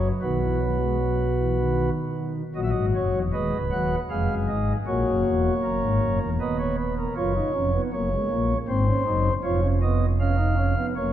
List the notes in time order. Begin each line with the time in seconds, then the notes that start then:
Already playing: F#1 F#2 F#3
0.22 B1 B2 D#3 F#4 B4
0.42 E3
0.61 F#3
0.80 G#3
1.00 F#3
1.39 E3
1.58 D#3
2.55 A#1 A#2 F#3 F#4 D#5
2.63 E5
2.70 D#5
2.75 G#1 G#2
2.95 F#1 F#2 C#5
3.14 E1 E2
3.33 D#1 D#2 G#3 B4 D#5
3.53 C#1 C#2
3.71 D#1 D#2 F#3 F#5
4.10 F1 F2 G#3 G#4 F5
4.29 F#1 F#2
4.48 G#1 G#2 D#5
4.86 A#1 A#2 A#3 F#4 C#5
5.06 F#1 F#2
5.25 E1 E2
5.63 F#1 F#2 A#4
5.82 G#1 G#2
6.02 F#1 F#2
6.21 E1 E2
6.40 D#1 D#2 B3 B4 D#5
6.59 C#5
6.79 B4
6.98 A#4
7.16 F#1 F#2 F4 C#5
7.36 D#4
7.55 F1 F2 C#4
7.74 B3
7.93 F#1 F#2 A#3 C#5
8.12 G#3
8.31 A#1 A#2 A#3
8.68 G#1 G#2 C4 C5
8.87 C#4
9.06 F#1 F#2 D#4
9.44 F1 F2 F4 C#5
9.63 C#4
9.82 B3 D#5
10.20 C#4 F5
10.38 D#4
10.58 C#4
10.77 B3
10.96 F#1 F#2 A#3 C#5